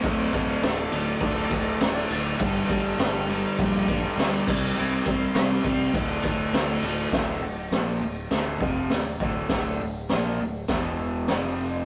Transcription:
<<
  \new Staff \with { instrumentName = "Lead electric guitar" } { \time 4/4 \key d \minor \tempo 4 = 101 <a' f''>8 <a' f''>8 d''2. | r1 | d'''16 c'''8. c'''4 r2 | r1 |
r1 | }
  \new Staff \with { instrumentName = "Overdriven electric guitar" } { \clef bass \time 4/4 \key d \minor <d, a, d>8 <d, a, d>8 <d, a, d>8 <d, a, d>8 <d, a, d>8 <d, a, d>8 <d, a, d>8 <d, a, d>8 | <g, d g>8 <g, d g>8 <g, d g>8 <g, d g>8 <g, d g>8 <g, d g>8 <g, d g>8 <c g c'>8 | <c g c'>8 <c g c'>8 <c g c'>8 <c g c'>8 <d, a, d>8 <d, a, d>8 <d, a, d>8 <d, a, d>8 | <d, a, d>8 <d, a,>8 <bes, f bes>8 <d, a,>8 <d, a, d>8 <f, c f>8 <d, a,>8 <d, a, d>8 |
<d, a, d>8 <d, a,>8 <bes, f bes>8 <d, a,>8 <e, b, e>4 <f, c f>4 | }
  \new Staff \with { instrumentName = "Fingered electric bass" } { \clef bass \time 4/4 \key d \minor d,,8 d,,8 d,,8 d,,8 d,,8 d,,8 d,,8 d,,8 | g,,8 g,,8 g,,4 bes,,4 d,8 c,8 | c,8 c,8 c,8 c,8 d,,8 d,,8 d,,8 d,,8 | d,,8 d,,8 bes,,8 d,,8 d,,8 f,,8 d,,8 d,,8 |
d,,8 d,,8 bes,,8 d,,8 e,,4 f,,4 | }
  \new DrumStaff \with { instrumentName = "Drums" } \drummode { \time 4/4 <bd cymr>8 <bd cymr>8 <cymr sn>8 cymr8 <bd cymr>8 <bd cymr>8 <cymr sn>8 cymr8 | <bd cymr>8 <bd cymr>8 <cymr sn>8 cymr8 <bd cymr>8 <bd cymr>8 <cymr sn>8 <cymc bd>8 | r8 <bd cymr>8 <cymr sn>8 <bd cymr>8 <bd cymr>8 <bd cymr>8 <cymr sn>8 cymr8 | <hho bd sn>4 <hho sn>4 <hho sn>8 bd8 <hho sn>8 bd8 |
<hho bd sn>4 <hho sn>4 <hho bd sn>4 <hho sn>4 | }
>>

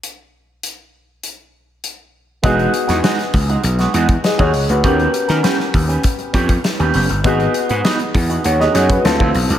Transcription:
<<
  \new Staff \with { instrumentName = "Grand piano" } { \time 4/4 \key e \major \tempo 4 = 100 << { r1 | r2. <gis' dis''>16 <gis' cis''>8 <fis' b'>16~ | <fis' b'>16 r2. r8. | r2 <cis'' fis''>16 <gis' dis''>16 <gis' cis''>16 <fis' b'>8 r8. | } \\ { r1 | <b dis' fis' gis'>1 | <b cis' g' ais'>1 | <b dis' fis' gis'>2. <c' e' f' a'>4 | } >> }
  \new Staff \with { instrumentName = "Clean electric guitar" } { \time 4/4 \key e \major r1 | <gis dis' fis'>8 r16 <gis dis' fis'>16 <gis dis' fis'>16 r8 <gis dis' fis'>16 r16 <gis dis' fis'>16 <gis dis' fis'>16 r8 <gis dis' fis'>16 r8 | <b cis' g'>8 r16 <b cis' ais'>16 <b cis' g'>16 r8 <b cis' g'>16 r8 <b cis' g'>16 r8 <b cis' g'>16 <b cis' g'>16 r16 | <b dis' fis'>8 r16 <b dis' fis'>16 <b dis' fis'>16 r8 <b dis' fis'>16 r16 <b dis' fis'>16 <b dis' fis'>16 r8 <f c' e'>16 r8 | }
  \new Staff \with { instrumentName = "Slap bass" } { \clef bass \time 4/4 \key e \major r1 | e,,8 r16 e,16 r8 cis,8 b,,8 e,8 r16 dis,16 cis,16 d,16 | dis,8 r16 dis16 r8 dis,8 r8 f,8 r16 dis,16 fis,,16 g,,16 | gis,,8 r16 gis,16 r8 e,8 dis,8 fis,8 d,16 d,16 b,,16 c,16 | }
  \new DrumStaff \with { instrumentName = "Drums" } \drummode { \time 4/4 hh4 hh4 hh4 hh4 | <hh bd>16 hh16 hh16 <hh sn>16 <hh sn>16 <hh sn>16 <hho bd>16 hh16 hh16 <hh sn>16 hh16 <hh bd>16 <hh sn>16 <hh bd>16 hho16 hh16 | <hh bd>16 hh16 hh16 <hh sn>16 <hh sn>16 sn16 <hho bd>16 hh16 <hh bd>16 hh16 <hh bd>16 <hh bd>16 <hh sn>16 hh16 hho16 hh16 | <hh bd>16 hh16 hh16 hh16 <hh sn>16 hh16 <hho bd>16 hh16 hh16 sn16 <hh sn>16 <hh bd>16 <hh sn>16 bd16 hho16 hh16 | }
>>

